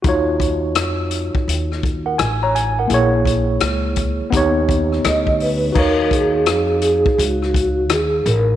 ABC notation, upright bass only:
X:1
M:4/4
L:1/16
Q:"Swing 16ths" 1/4=84
K:Ebm
V:1 name="Upright bass" clef=bass
E,,4 F,,3 z E,,4 =A,,,4 | B,,,4 D,,3 z E,,4 =D,,4 | E,,4 F,,3 z D,,4 E,,2 =A,,,2 |]